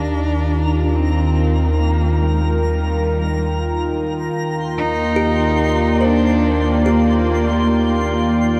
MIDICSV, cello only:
0, 0, Header, 1, 2, 480
1, 0, Start_track
1, 0, Key_signature, -3, "major"
1, 0, Tempo, 845070
1, 1021, Time_signature, 3, 2, 24, 8
1, 4884, End_track
2, 0, Start_track
2, 0, Title_t, "Cello"
2, 0, Program_c, 0, 42
2, 0, Note_on_c, 0, 62, 94
2, 544, Note_on_c, 0, 60, 80
2, 552, Note_off_c, 0, 62, 0
2, 1019, Note_on_c, 0, 58, 79
2, 1028, Note_off_c, 0, 60, 0
2, 1256, Note_on_c, 0, 56, 68
2, 1265, Note_off_c, 0, 58, 0
2, 1490, Note_on_c, 0, 55, 66
2, 1498, Note_off_c, 0, 56, 0
2, 2215, Note_off_c, 0, 55, 0
2, 2714, Note_on_c, 0, 63, 99
2, 3433, Note_on_c, 0, 62, 87
2, 3442, Note_off_c, 0, 63, 0
2, 3894, Note_on_c, 0, 58, 74
2, 3902, Note_off_c, 0, 62, 0
2, 4617, Note_off_c, 0, 58, 0
2, 4884, End_track
0, 0, End_of_file